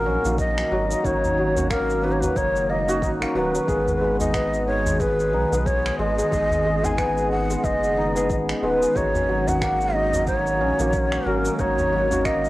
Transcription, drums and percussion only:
0.25 shaker
0.39 kick, shaker
0.58 finger snap, shaker
0.91 shaker
1.04 kick, shaker
1.24 udu, shaker
1.56 udu, shaker
1.70 finger snap, kick, shaker
1.90 shaker
2.22 udu, shaker
2.36 kick, shaker
2.56 shaker
2.89 shaker
3.02 kick, shaker
3.22 finger snap, shaker
3.55 shaker
3.68 kick, shaker
3.88 udu, shaker
4.20 udu, shaker
4.34 finger snap, kick, shaker
4.54 shaker
4.86 udu, shaker
5.00 kick, shaker
5.20 shaker
5.53 shaker
5.66 kick, shaker
5.86 finger snap, shaker
6.19 shaker
6.32 kick, shaker
6.50 udu, shaker
6.84 udu, shaker
6.98 finger snap, kick, shaker
7.17 shaker
7.50 shaker
7.64 kick, shaker
7.84 shaker
8.16 shaker
8.30 kick, shaker
8.49 finger snap, shaker
8.82 shaker
8.96 kick, shaker
9.14 udu, shaker
9.48 udu, shaker
9.62 finger snap, kick, shaker
9.81 shaker
10.13 udu, shaker
10.27 kick, shaker
10.47 shaker
10.80 shaker
10.93 kick, shaker
11.12 finger snap, shaker
11.45 shaker
11.59 kick, shaker
11.78 udu, shaker
12.11 udu, shaker
12.25 finger snap, kick, shaker
12.45 shaker

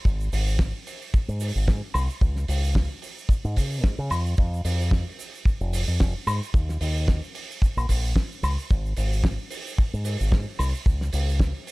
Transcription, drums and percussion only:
0.05 kick, shaker
0.20 shaker
0.33 open hi-hat, shaker
0.47 shaker
0.59 kick, snare, shaker
0.87 open hi-hat, shaker
1.02 shaker
1.14 kick, shaker
1.29 shaker
1.40 open hi-hat, shaker
1.56 shaker
1.68 kick, snare, shaker
1.94 open hi-hat, high woodblock, shaker
2.10 shaker
2.21 kick, shaker
2.36 snare, shaker
2.48 open hi-hat, shaker
2.64 shaker
2.75 kick, snare, shaker
3.02 open hi-hat, shaker
3.18 shaker
3.29 kick, shaker
3.44 shaker
3.56 kick, open hi-hat, shaker
3.71 shaker
3.84 kick, snare, shaker
4.10 open hi-hat, high woodblock, shaker
4.26 shaker
4.37 kick, shaker
4.54 shaker
4.65 open hi-hat, shaker
4.81 shaker
4.91 kick, snare, shaker
5.19 open hi-hat, shaker
5.35 shaker
5.45 kick, shaker
5.61 shaker
5.73 open hi-hat, shaker
5.88 shaker
6.00 kick, snare, shaker
6.27 open hi-hat, high woodblock, shaker
6.43 shaker
6.54 kick, shaker
6.69 snare, shaker
6.81 open hi-hat, shaker
6.97 shaker
7.08 kick, snare, shaker
7.23 shaker
7.35 open hi-hat, shaker
7.51 shaker
7.62 kick, shaker
7.77 high woodblock, shaker
7.89 kick, open hi-hat, shaker
8.04 shaker
8.16 kick, snare, shaker
8.32 shaker
8.43 open hi-hat, high woodblock, shaker
8.59 shaker
8.70 kick, shaker
8.85 shaker
8.96 open hi-hat, shaker
9.13 shaker
9.24 kick, snare, shaker
9.50 open hi-hat, shaker
9.67 shaker
9.78 kick, shaker
9.94 shaker
10.05 open hi-hat, shaker
10.20 shaker
10.32 kick, snare, shaker
10.59 open hi-hat, high woodblock, shaker
10.74 shaker
10.86 kick, shaker
11.01 snare, shaker
11.13 open hi-hat, shaker
11.29 shaker
11.40 kick, snare, shaker
11.67 open hi-hat, shaker

